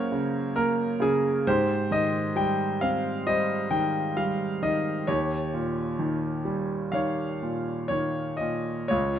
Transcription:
Already playing: F#2 C#3 A#3 C#4 A#4 C5 C#5 F5 F#5
0.12 C#3
0.56 A#3 A#4
1.00 C#3 G#4
1.47 G#2 G4 C5
1.91 D#3 D#5
2.36 G3 G5
2.81 C4 F5
3.27 G3 C5 D#5
3.71 D#3 G5
4.17 G3 F5
4.62 D#3 D#5
5.07 D#2 G4 C#5
5.54 A#2
5.99 D#3
6.45 G3
6.92 D#3 C#5 F5
7.42 A#2
7.88 D#3 C#5
8.37 A#2 D#5
8.88 C#2 F4 C#5

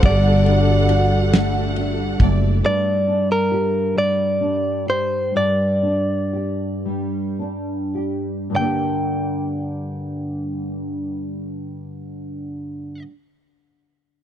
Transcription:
Already playing: G3 A3 D4 F#4 A4 F#5
0.03 G1 G3 D5, kick, ride
0.46 D4, ride
0.89 F#4, ride
1.33 A3, snare, ride
1.76 D4, ride
2.20 F#1 A3 D5, kick, ride
2.63 G2 D5
3.07 D4
3.32 A#4
3.51 G4
3.95 G3 D5
4.41 D4
4.87 G4 C5
5.35 G2 D5
5.83 D4
6.33 G4
6.85 G3
7.39 D4
7.95 G4
8.50 G2 D3
8.56 G3 A#3 G5
8.61 D4 G4

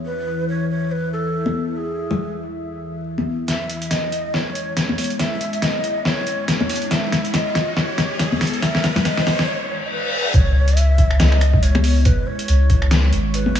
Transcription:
Already playing: E3 E4
0.05 B4 E5
0.49 C#5
0.70 C#5
0.91 B4
1.13 A4
1.46 high conga
1.77 G#4
2.11 low conga
3.18 high conga
3.48 G#3 E4 C#5 E5, snare, closed hi-hat, riser
3.70 closed hi-hat
3.82 closed hi-hat
3.91 D#5, snare, closed hi-hat
4.12 closed hi-hat
4.34 C#5, snare
4.55 closed hi-hat
4.77 C#5, snare, closed hi-hat
4.89 high conga
4.98 open hi-hat
5.04 closed hi-hat
5.10 closed hi-hat
5.19 E5, snare, closed hi-hat
5.41 closed hi-hat
5.53 closed hi-hat
5.62 D#5, snare, closed hi-hat
5.84 closed hi-hat
6.05 C#5, snare
6.27 closed hi-hat
6.48 C#5, snare, closed hi-hat
6.60 high conga
6.69 open hi-hat
6.76 closed hi-hat
6.82 closed hi-hat
6.91 E5, snare, closed hi-hat
7.12 snare, closed hi-hat
7.25 closed hi-hat
7.34 D#5, snare, closed hi-hat
7.55 snare, closed hi-hat
7.77 C#5, snare
7.98 snare, closed hi-hat
8.19 C#5, snare, closed hi-hat
8.32 high conga
8.41 snare, open hi-hat
8.47 closed hi-hat
8.53 closed hi-hat
8.62 E5, snare, closed hi-hat
8.75 snare
8.84 snare, closed hi-hat
8.96 snare, closed hi-hat, low conga
9.05 D#5, snare, closed hi-hat
9.17 snare
9.27 snare, open hi-hat
9.39 snare
9.48 C#5, reverse cymbal
9.85 D#5
9.91 B4
10.34 C#2 G#3 E4 C#5, kick, closed hi-hat
10.68 closed hi-hat
10.77 E5, closed hi-hat
10.98 kick, closed hi-hat
11.11 finger snap
11.20 C#2 D#5, snare, closed hi-hat
11.32 finger snap
11.41 finger snap, closed hi-hat
11.53 kick
11.63 C#5, closed hi-hat
11.75 finger snap, high conga
11.84 open hi-hat
12.05 B4, kick, closed hi-hat
12.27 C#5
12.39 closed hi-hat
12.48 C#2, closed hi-hat
12.70 kick, closed hi-hat
12.82 finger snap
12.91 snare, closed hi-hat
13.12 G#1, closed hi-hat
13.34 B4, closed hi-hat
13.46 high conga
13.55 finger snap, open hi-hat

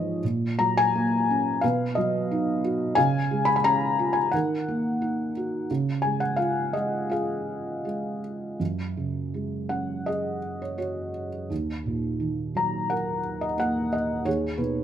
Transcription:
Already playing: G#2 F3 F4 G#4 C#5 D#5
0.24 A#2
0.59 F#3 A#5
0.77 G#5
0.95 A#3
1.30 C#4
1.61 B2 B4 F5
1.95 F#3 D#5
2.31 D#4
2.64 F#4
2.95 C#3 F5 G#5
3.31 G#3
3.45 B5
3.56 B5
3.64 C#4 A#5
3.99 F4
4.13 G#5
4.32 D#3 A#4 F#5
4.68 A#3
5.02 D#4
5.37 F#4
5.71 C#3
6.02 G#3 G#5
6.20 F#5
6.36 F4 F5
6.73 G#3 D#5
7.09 F4 G#4 F5
7.85 G#3
8.60 F#2
8.97 C#3
9.34 G#3
9.69 C#4 F#5
10.06 G#4 D#5
10.62 C#5
10.78 F#4 C#5
11.50 D#2
11.86 A#2
12.20 D#3
12.55 F#3 A#5
12.90 A#4 F#5
13.41 D#5
13.58 A#3 F#5
13.93 D#5
14.24 D#2 G#4 C#5
14.58 B2 D#4 B4

